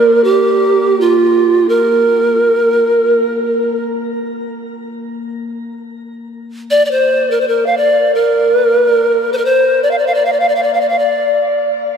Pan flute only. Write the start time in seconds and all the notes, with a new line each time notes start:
Already playing: A#4
0.24 G4
1.00 F4
1.69 A#4
6.71 D5
6.85 D5
6.91 C5
7.31 A#4
7.41 C5
7.48 A#4
7.66 F5
7.77 D5
8.15 A#4
9.33 C5
9.37 A#4
9.45 C5
9.83 D5
9.91 F5
9.98 D5
10.07 F5
10.14 D5
10.25 F5
10.32 D5
10.40 F5
10.49 D5
10.55 F5
10.63 D5
10.74 F5
10.81 D5
10.89 F5
10.99 D5